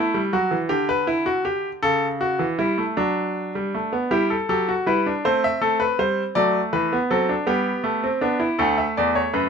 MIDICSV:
0, 0, Header, 1, 2, 480
1, 0, Start_track
1, 0, Key_signature, 1, "major"
1, 0, Tempo, 753769
1, 1166, Time_signature, 6, 3, 24, 8
1, 3098, Tempo, 744417
1, 6081, End_track
2, 0, Start_track
2, 0, Title_t, "Grand piano"
2, 0, Program_c, 0, 0
2, 0, Note_on_c, 0, 57, 63
2, 0, Note_on_c, 0, 64, 69
2, 92, Note_on_c, 0, 55, 67
2, 93, Note_off_c, 0, 57, 0
2, 124, Note_off_c, 0, 64, 0
2, 208, Note_off_c, 0, 55, 0
2, 208, Note_on_c, 0, 54, 61
2, 211, Note_on_c, 0, 66, 74
2, 325, Note_off_c, 0, 54, 0
2, 325, Note_on_c, 0, 52, 58
2, 358, Note_off_c, 0, 66, 0
2, 440, Note_on_c, 0, 67, 79
2, 443, Note_off_c, 0, 52, 0
2, 443, Note_on_c, 0, 50, 65
2, 560, Note_off_c, 0, 67, 0
2, 566, Note_on_c, 0, 71, 77
2, 682, Note_off_c, 0, 71, 0
2, 683, Note_on_c, 0, 64, 70
2, 800, Note_off_c, 0, 64, 0
2, 802, Note_on_c, 0, 66, 73
2, 920, Note_off_c, 0, 66, 0
2, 922, Note_on_c, 0, 67, 74
2, 1072, Note_off_c, 0, 67, 0
2, 1141, Note_off_c, 0, 50, 0
2, 1162, Note_on_c, 0, 69, 86
2, 1164, Note_on_c, 0, 49, 66
2, 1313, Note_off_c, 0, 69, 0
2, 1405, Note_on_c, 0, 66, 70
2, 1516, Note_off_c, 0, 49, 0
2, 1524, Note_on_c, 0, 52, 60
2, 1556, Note_off_c, 0, 66, 0
2, 1643, Note_off_c, 0, 52, 0
2, 1647, Note_on_c, 0, 55, 59
2, 1647, Note_on_c, 0, 64, 66
2, 1766, Note_off_c, 0, 55, 0
2, 1769, Note_on_c, 0, 57, 55
2, 1798, Note_off_c, 0, 64, 0
2, 1887, Note_off_c, 0, 57, 0
2, 1891, Note_on_c, 0, 62, 68
2, 1892, Note_on_c, 0, 54, 62
2, 2243, Note_off_c, 0, 54, 0
2, 2262, Note_on_c, 0, 55, 57
2, 2375, Note_off_c, 0, 55, 0
2, 2385, Note_on_c, 0, 57, 56
2, 2496, Note_off_c, 0, 57, 0
2, 2500, Note_on_c, 0, 59, 59
2, 2593, Note_off_c, 0, 62, 0
2, 2614, Note_off_c, 0, 59, 0
2, 2616, Note_on_c, 0, 55, 63
2, 2617, Note_on_c, 0, 67, 77
2, 2619, Note_on_c, 0, 64, 66
2, 2734, Note_off_c, 0, 64, 0
2, 2739, Note_on_c, 0, 69, 54
2, 2765, Note_off_c, 0, 55, 0
2, 2766, Note_off_c, 0, 67, 0
2, 2851, Note_off_c, 0, 69, 0
2, 2860, Note_on_c, 0, 54, 58
2, 2861, Note_on_c, 0, 67, 61
2, 2861, Note_on_c, 0, 69, 68
2, 2976, Note_off_c, 0, 67, 0
2, 2984, Note_on_c, 0, 66, 61
2, 3008, Note_off_c, 0, 54, 0
2, 3009, Note_off_c, 0, 69, 0
2, 3097, Note_off_c, 0, 66, 0
2, 3098, Note_on_c, 0, 55, 58
2, 3101, Note_on_c, 0, 64, 62
2, 3102, Note_on_c, 0, 71, 70
2, 3217, Note_off_c, 0, 64, 0
2, 3227, Note_on_c, 0, 62, 55
2, 3248, Note_off_c, 0, 55, 0
2, 3251, Note_off_c, 0, 71, 0
2, 3340, Note_off_c, 0, 62, 0
2, 3347, Note_on_c, 0, 60, 58
2, 3347, Note_on_c, 0, 72, 75
2, 3350, Note_on_c, 0, 57, 61
2, 3460, Note_off_c, 0, 72, 0
2, 3470, Note_on_c, 0, 76, 75
2, 3496, Note_off_c, 0, 57, 0
2, 3581, Note_on_c, 0, 57, 59
2, 3582, Note_off_c, 0, 76, 0
2, 3582, Note_on_c, 0, 69, 74
2, 3698, Note_off_c, 0, 69, 0
2, 3699, Note_on_c, 0, 71, 74
2, 3730, Note_off_c, 0, 57, 0
2, 3817, Note_off_c, 0, 71, 0
2, 3823, Note_on_c, 0, 55, 58
2, 3824, Note_on_c, 0, 72, 72
2, 3972, Note_off_c, 0, 55, 0
2, 3973, Note_off_c, 0, 72, 0
2, 4044, Note_off_c, 0, 60, 0
2, 4057, Note_on_c, 0, 74, 83
2, 4060, Note_on_c, 0, 54, 64
2, 4060, Note_on_c, 0, 57, 65
2, 4208, Note_off_c, 0, 74, 0
2, 4211, Note_off_c, 0, 54, 0
2, 4299, Note_on_c, 0, 52, 57
2, 4300, Note_on_c, 0, 71, 74
2, 4412, Note_off_c, 0, 57, 0
2, 4427, Note_on_c, 0, 59, 62
2, 4449, Note_off_c, 0, 52, 0
2, 4450, Note_off_c, 0, 71, 0
2, 4542, Note_off_c, 0, 59, 0
2, 4543, Note_on_c, 0, 54, 61
2, 4543, Note_on_c, 0, 60, 63
2, 4544, Note_on_c, 0, 69, 67
2, 4659, Note_off_c, 0, 60, 0
2, 4662, Note_on_c, 0, 62, 57
2, 4691, Note_off_c, 0, 54, 0
2, 4691, Note_off_c, 0, 69, 0
2, 4775, Note_on_c, 0, 59, 67
2, 4776, Note_on_c, 0, 55, 63
2, 4778, Note_off_c, 0, 62, 0
2, 4778, Note_on_c, 0, 67, 75
2, 4925, Note_off_c, 0, 55, 0
2, 5014, Note_on_c, 0, 57, 64
2, 5124, Note_off_c, 0, 59, 0
2, 5143, Note_on_c, 0, 60, 62
2, 5163, Note_off_c, 0, 57, 0
2, 5256, Note_off_c, 0, 60, 0
2, 5257, Note_on_c, 0, 62, 67
2, 5261, Note_on_c, 0, 59, 61
2, 5373, Note_off_c, 0, 62, 0
2, 5374, Note_on_c, 0, 64, 61
2, 5408, Note_off_c, 0, 59, 0
2, 5472, Note_off_c, 0, 67, 0
2, 5491, Note_off_c, 0, 64, 0
2, 5497, Note_on_c, 0, 69, 67
2, 5501, Note_on_c, 0, 38, 77
2, 5503, Note_on_c, 0, 57, 69
2, 5613, Note_off_c, 0, 69, 0
2, 5620, Note_on_c, 0, 76, 59
2, 5648, Note_off_c, 0, 38, 0
2, 5735, Note_off_c, 0, 76, 0
2, 5747, Note_on_c, 0, 74, 65
2, 5750, Note_on_c, 0, 40, 74
2, 5859, Note_off_c, 0, 74, 0
2, 5864, Note_on_c, 0, 73, 66
2, 5895, Note_off_c, 0, 40, 0
2, 5977, Note_off_c, 0, 73, 0
2, 5980, Note_on_c, 0, 71, 65
2, 5981, Note_on_c, 0, 42, 78
2, 6081, Note_off_c, 0, 42, 0
2, 6081, Note_off_c, 0, 57, 0
2, 6081, Note_off_c, 0, 71, 0
2, 6081, End_track
0, 0, End_of_file